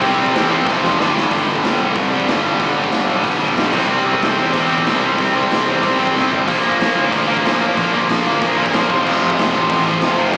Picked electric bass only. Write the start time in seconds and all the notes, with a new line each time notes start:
0.02 C2
0.17 C2
0.33 E2
0.66 F1
0.82 F1
0.98 G1
1.32 G1
1.47 G1
1.64 G1
1.80 C2
1.96 C2
2.28 G1
2.59 G1
2.76 G1
2.92 G1
3.08 B1
3.24 G1
3.39 G1
3.56 B1
3.73 C2
3.89 C2
4.05 C2
4.21 C2
4.38 E2
4.54 E2
4.86 C2
5.18 C2
5.35 C2
5.51 C2
5.67 E2
5.83 C2
5.99 C2
6.16 C2
6.31 G1
6.48 A#1
6.64 A#1
6.79 A#1
6.96 D2
7.12 D2
7.44 A#1
7.77 A#1
7.93 A#1
8.09 A#1
8.27 D2
8.42 A#1
8.59 A#1
8.75 A#1
8.90 F1
9.08 F1
9.24 F1
9.39 F1
9.55 A1
9.70 A1
10.01 F1
10.33 F1